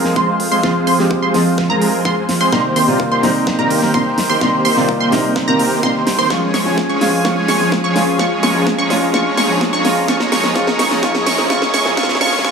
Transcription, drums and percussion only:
0.04 snare
0.16 kick
0.40 open hi-hat
0.63 kick, snare
0.87 open hi-hat
0.99 snare
1.11 kick
1.34 snare, open hi-hat
1.58 kick, snare
1.82 open hi-hat
2.05 kick
2.29 snare, open hi-hat
2.52 kick, snare
2.76 open hi-hat
3.00 kick
3.23 snare, open hi-hat
3.47 kick, snare
3.70 open hi-hat
3.82 snare
3.94 kick
4.18 snare, open hi-hat
4.41 kick, snare
4.65 open hi-hat
4.77 snare
4.89 kick
5.12 snare, open hi-hat
5.36 kick, snare
5.59 open hi-hat
5.83 kick
6.07 snare, open hi-hat
6.30 kick, snare
6.54 snare, open hi-hat
6.78 kick, snare
7.01 snare, open hi-hat
7.25 kick, snare
7.48 snare, open hi-hat
7.72 kick, snare
7.96 snare, open hi-hat
8.19 kick, snare
8.43 snare, open hi-hat
8.67 kick, snare
8.90 snare, open hi-hat
9.14 kick, snare
9.37 snare, open hi-hat
9.61 kick, snare
9.85 snare, open hi-hat
10.08 kick, snare
10.20 snare
10.32 snare, open hi-hat
10.44 snare
10.56 kick, snare
10.67 snare
10.79 snare, open hi-hat
10.91 snare
11.03 kick, snare
11.15 snare
11.26 snare, open hi-hat
11.38 snare
11.50 kick, snare
11.62 snare
11.74 snare, open hi-hat
11.86 snare
11.97 kick, snare
12.03 snare
12.09 snare
12.15 snare
12.21 snare, open hi-hat
12.27 snare
12.33 snare
12.39 snare
12.45 kick, snare

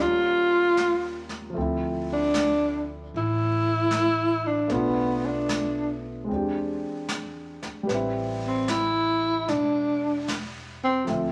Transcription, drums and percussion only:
0.77 snare, hi-hat pedal
1.29 snare
1.55 brush sweep
2.34 snare, hi-hat pedal
3.12 brush sweep
3.91 snare, hi-hat pedal
4.69 brush sweep, snare
5.49 snare, hi-hat pedal
6.29 brush sweep
7.09 snare, hi-hat pedal
7.63 snare
7.89 brush sweep, snare
8.68 snare, hi-hat pedal
9.48 brush sweep, snare
10.28 snare, hi-hat pedal
11.07 brush sweep, snare

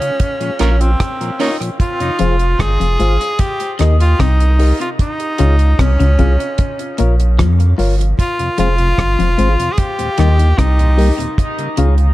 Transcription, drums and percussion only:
0.02 closed hi-hat
0.20 kick, closed hi-hat
0.41 closed hi-hat
0.59 cross-stick, closed hi-hat
0.81 closed hi-hat
1.00 kick, cross-stick, closed hi-hat
1.21 closed hi-hat
1.40 open hi-hat
1.61 closed hi-hat
1.80 kick, closed hi-hat
2.00 closed hi-hat
2.19 closed hi-hat
2.39 closed hi-hat
2.60 kick, cross-stick, closed hi-hat
2.81 closed hi-hat
3.00 closed hi-hat
3.21 closed hi-hat
3.39 kick, closed hi-hat
3.60 closed hi-hat
3.79 cross-stick, closed hi-hat
4.00 closed hi-hat
4.20 kick, cross-stick, closed hi-hat
4.40 closed hi-hat
4.59 open hi-hat
4.81 closed hi-hat
4.99 kick, closed hi-hat
5.20 closed hi-hat
5.38 closed hi-hat
5.59 closed hi-hat
5.79 kick, cross-stick, closed hi-hat
6.00 closed hi-hat
6.19 kick, closed hi-hat
6.40 closed hi-hat
6.58 kick, closed hi-hat
6.79 closed hi-hat
6.98 closed hi-hat
7.20 closed hi-hat
7.39 kick, cross-stick, closed hi-hat
7.60 closed hi-hat
7.79 open hi-hat
8.01 closed hi-hat
8.19 kick, closed hi-hat
8.39 closed hi-hat
8.58 closed hi-hat
8.78 closed hi-hat
8.98 kick, cross-stick, closed hi-hat
9.20 closed hi-hat
9.39 closed hi-hat
9.60 closed hi-hat
9.78 kick, closed hi-hat
9.99 closed hi-hat
10.18 cross-stick, closed hi-hat
10.39 closed hi-hat
10.58 kick, cross-stick, closed hi-hat
10.79 closed hi-hat
10.98 open hi-hat
11.20 closed hi-hat
11.38 kick, closed hi-hat
11.58 closed hi-hat
11.77 closed hi-hat
11.98 closed hi-hat

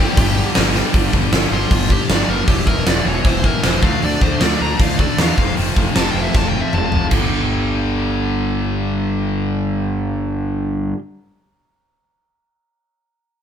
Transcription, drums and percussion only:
0.17 kick, open hi-hat
0.55 snare, open hi-hat
0.75 snare
0.94 kick, open hi-hat
1.13 kick
1.33 snare, open hi-hat
1.71 kick, open hi-hat
1.90 kick
2.09 snare, open hi-hat
2.48 kick, open hi-hat
2.67 kick
2.87 snare, open hi-hat
3.25 kick, open hi-hat
3.44 kick
3.63 snare, open hi-hat
3.83 kick
4.02 open hi-hat
4.21 kick
4.41 snare, open hi-hat
4.79 kick, open hi-hat
4.99 kick
5.18 snare, open hi-hat
5.38 kick
5.57 open hi-hat
5.76 kick
5.96 snare, open hi-hat
6.34 kick, snare
6.73 mid tom
6.92 floor tom
7.11 kick, crash

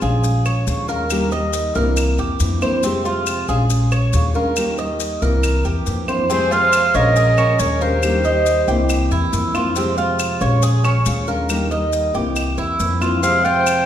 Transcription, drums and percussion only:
0.01 maracas
0.24 maracas
0.45 claves, maracas
0.67 maracas
0.88 maracas
1.10 claves, maracas
1.32 maracas
1.53 maracas
1.75 maracas
1.97 claves, maracas
2.18 maracas
2.40 maracas
2.62 claves, maracas
2.83 maracas
3.05 maracas
3.26 claves, maracas
3.48 maracas
3.70 maracas
3.92 claves, maracas
4.13 maracas
4.35 maracas
4.56 claves, maracas
4.78 maracas
5.00 maracas
5.22 maracas
5.43 claves, maracas
5.65 maracas
5.87 maracas
6.08 claves, maracas
6.30 maracas
6.52 maracas
6.73 claves, maracas
6.94 maracas
7.16 maracas
7.38 claves, maracas
7.59 maracas
7.81 maracas
8.03 claves, maracas
8.24 maracas
8.46 maracas
8.68 maracas
8.89 claves, maracas
9.11 maracas
9.33 maracas
9.55 claves, maracas
9.76 maracas
9.97 maracas
10.19 claves, maracas
10.41 maracas
10.62 maracas
10.84 claves, maracas
11.06 maracas
11.28 maracas
11.49 claves, maracas
11.71 maracas
11.93 maracas
12.14 maracas
12.36 claves, maracas
12.58 maracas
12.80 maracas
13.02 claves, maracas
13.23 maracas
13.45 maracas
13.67 claves, maracas

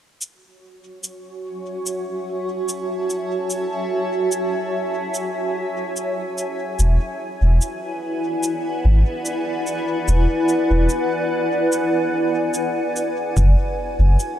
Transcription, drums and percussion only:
0.21 cabasa
1.04 cabasa
1.86 cabasa
2.69 cabasa
3.10 cabasa
3.50 cabasa
4.32 cabasa
5.14 cabasa
5.96 cabasa
6.38 cabasa
6.79 cabasa
7.61 cabasa
8.43 cabasa
9.26 cabasa
9.67 cabasa
10.08 cabasa
10.49 cabasa
10.89 cabasa
11.72 cabasa
12.54 cabasa
12.96 cabasa
13.37 kick, cabasa
14.20 cabasa

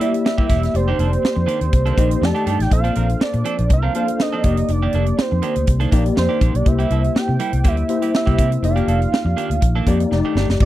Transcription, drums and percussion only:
0.01 closed hi-hat
0.14 closed hi-hat
0.26 snare
0.38 kick
0.50 kick, snare, closed hi-hat
0.63 snare, closed hi-hat
0.75 closed hi-hat
0.99 closed hi-hat
1.13 closed hi-hat
1.25 snare
1.48 closed hi-hat
1.61 closed hi-hat
1.73 kick, closed hi-hat
1.86 closed hi-hat
1.98 kick, closed hi-hat
2.11 closed hi-hat
2.23 snare
2.36 closed hi-hat
2.47 closed hi-hat
2.60 snare, closed hi-hat
2.71 kick, closed hi-hat
2.84 closed hi-hat
2.95 closed hi-hat
3.09 closed hi-hat
3.21 snare
3.33 closed hi-hat
3.45 closed hi-hat
3.58 closed hi-hat
3.70 kick, closed hi-hat
3.95 closed hi-hat
4.08 closed hi-hat
4.20 snare
4.44 kick, closed hi-hat
4.57 closed hi-hat
4.68 closed hi-hat
4.93 closed hi-hat
5.06 closed hi-hat
5.19 snare
5.42 closed hi-hat
5.56 closed hi-hat
5.67 kick, closed hi-hat
5.80 closed hi-hat
5.92 kick, closed hi-hat
6.06 closed hi-hat
6.17 snare
6.41 kick, closed hi-hat
6.55 closed hi-hat
6.66 kick, closed hi-hat
6.79 closed hi-hat
6.90 closed hi-hat
7.04 closed hi-hat
7.16 snare
7.40 closed hi-hat
7.53 closed hi-hat
7.64 kick, closed hi-hat
7.77 closed hi-hat
7.89 closed hi-hat
8.02 closed hi-hat
8.15 snare
8.27 kick, closed hi-hat
8.39 kick, closed hi-hat
8.52 closed hi-hat
8.64 closed hi-hat
8.77 closed hi-hat
8.88 closed hi-hat
9.02 closed hi-hat
9.14 snare
9.38 closed hi-hat
9.51 closed hi-hat
9.62 kick, closed hi-hat
9.87 kick, closed hi-hat
10.00 closed hi-hat
10.12 snare
10.37 snare
10.50 snare
10.60 kick, crash

